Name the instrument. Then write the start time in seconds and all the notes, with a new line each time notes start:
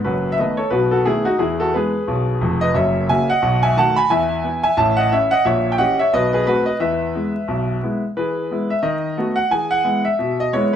grand piano
0.04 F#1 F#2 F#4 B4
0.32 E5
0.39 D#3 A3 B3 B4 D#5
0.57 A4 C#5
0.70 B1 B2 F#4 B4
0.91 F#4 A4
1.05 D#3 A3 B3 E4 G#4
1.25 D#4 F#4
1.38 E2 E3 E4 G#4
1.60 F#4 A4
1.74 E3 G#3 B3 G#4 B4
2.08 B1 B2
2.41 F1 F2
2.61 B4 D#5
2.74 F#1 F#2 C#5 E5
3.09 C#3 A#3 F#4 E5 G#5
3.30 D#5 F#5
3.42 B1 B2
3.63 E5 G#5
3.77 D#3 A3 F#4 F#5 A5
3.96 G#5 B5
4.10 E2 E3 E5 G#5
4.44 E3 B3 E4
4.63 E5 G#5
4.77 A1 A2 E5 A5
4.97 D#5 F#5
5.12 E3 C#4 E4 C#5 E5
5.31 D#5 F#5
5.45 A#1 A#2 C#5 E5
5.72 G5
5.78 E3 C#4 G4 D#5 F#5
5.99 C#5 E5
6.13 B1 B2 B4 D#5
6.33 G#4 B4
6.47 A3 C4 F#4 B4
6.66 B4 D#5
6.80 E2 E3 B4 E5
7.15 G#3 B3 E4
7.48 B1 B2
7.83 G#3 B3 E4
8.17 E3 G#4 B4
8.51 G#3 B3 E4
8.70 E5
8.83 D#3 D#5
9.17 A3 B3 F#4
9.36 F#5
9.51 E3 G#4 G#5
9.71 F#5
9.84 G#3 B3 E4
10.05 E5
10.19 B2
10.40 D#5
10.53 G#3 B3 E4 C#5